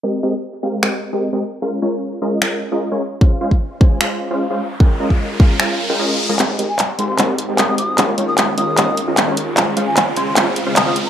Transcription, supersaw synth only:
\new Staff \with { instrumentName = "Supersaw synth" } { \time 4/4 \key aes \major \tempo 4 = 151 <aes c' g' bes' ees''>8 <aes c' g' bes' ees''>16 r8. <aes c' g' bes' f''>8 <aes c' g' bes' ees''>8. <aes c' g' bes' ees''>8 <aes c' g' bes' ees''>16 r8 | <aes des' f' bes' f''>8 <aes des' f' bes' des''>4 <aes des' f' bes' ees''>8 <aes des' f' bes' ees''>8. <aes des' f' bes' ees''>8 <aes des' f' bes' des''>16 r8 | <aes des' f' c'' f''>8 <aes des' f' c'' f''>16 r8. <aes des' f' c'' aes''>8 <aes des' f' c'' f''>8. <aes des' f' c'' f''>8 <aes des' f' c'' f''>16 r8 | <aes des' f' bes' g''>8 <aes des' f' bes' ees''>4 <aes des' f' bes' f''>8 <aes des' f' bes' f''>8. <aes des' f' bes' g''>16 <aes des' f' bes' ees''>8. <aes des' f' bes' ees''>16 |
<aes c' g' ees''>8 <aes c' g' bes' ees''>16 r8. <aes c' g' bes' f''>8 <aes c' g' bes' ees''>8. <aes c' g' bes' ees''>8 <aes c' g' bes' ees''>16 r8 | <aes des' f' bes' f''>8 <aes des' f' bes' des''>4 <aes des' f' bes' ees''>8 <aes des' f' bes' ees''>8. <aes des' f' bes' ees''>8 <aes des' f' bes' des''>16 r8 | <aes des' f' c'' f''>8 <aes des' f' c'' f''>16 r8. <aes des' f' c'' aes''>8 <aes des' f' c'' f''>8. <aes des' f' c'' f''>8 <aes des' f' c'' f''>16 r8 | }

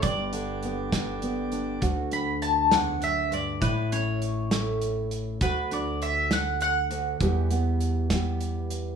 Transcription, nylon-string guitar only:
\new Staff \with { instrumentName = "Nylon-string guitar" } { \time 6/8 \key d \major \tempo 4. = 67 << { r4 b4 b8 d'8 | fis'8 d'2~ d'8 | e'8 cis'4 <a cis' e'>4. | fis'8 d'2~ d'8 |
<e g b g'>8 b4 <g b g'>4. | } \\ { g,8 d4 d4. | d,4. e,8 fis,8 g,8 | a,2. | d,2~ d,8 d,8 |
e,2. | } >> }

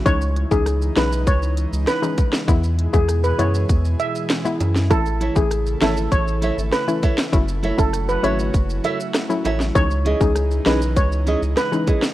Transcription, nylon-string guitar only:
\new Staff \with { instrumentName = "Nylon-string guitar" } { \time 4/4 \key cis \minor \tempo 4 = 99 r1 | r1 | r8 <e' a' cis'' e''>8 r8 <e' a' cis'' e''>8 r8 <e' a' cis'' e''>8 r8 <e' a' cis'' e''>8 | r8 <e' a' cis'' e''>8 r8 <e' a' cis'' e''>8 r8 <e' a' cis'' e''>8 r8 <e' a' cis'' e''>8 |
r8 <cis' e' gis' dis''>8 r8 <cis' e' gis' dis''>8 r8 <cis' e' gis' dis''>8 r8 <cis' e' gis' dis''>8 | }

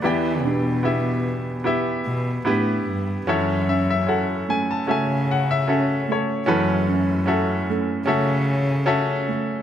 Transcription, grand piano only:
<<
  \new Staff \with { instrumentName = "Grand piano" } { \time 4/4 \key fis \minor \tempo 4 = 75 << { <b' g''>2. r4 | cis''8 e''16 e''16 r8 gis''16 a''16 gis''8 fis''16 e''8. <a' cis''>8~ | <a' cis''>4. r2 r8 | } \\ { <b e' g' d''>4 <b e' g' e''>4 <b e' g' e''>4 <b e' g' b'>4 | <cis' fis' a' e''>4 <cis' fis' a' fis''>4 <cis' fis' a' e''>4 <cis' fis' a' e''>4 | <cis' fis' a' b'>4 <cis' fis' a' e''>4 <cis' fis' a' e''>4 <cis' fis' a' e''>4 | } >> }
  \new Staff \with { instrumentName = "Grand piano" } { \clef bass \time 4/4 \key fis \minor <e, e>1 | <fis,, fis,>1 | <fis,, fis,>1 | }
>>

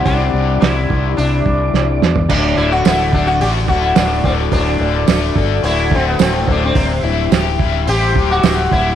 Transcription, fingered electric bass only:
\new Staff \with { instrumentName = "Fingered electric bass" } { \clef bass \time 4/4 \key d \mixolydian \tempo 4 = 107 c,8 c,8 c,8 c,8 c,8 c,8 c,8 e,8 | d,,8 d,,8 d,,4 a,,8 d,,8 d,,8 d,,8 | d,,8 d,,8 d,,8 g,,8 d,,4 d,,8 d,,8 | d,,8 d,,8 d,,4 a,,8 d,,8 d,,8 d,,8 | }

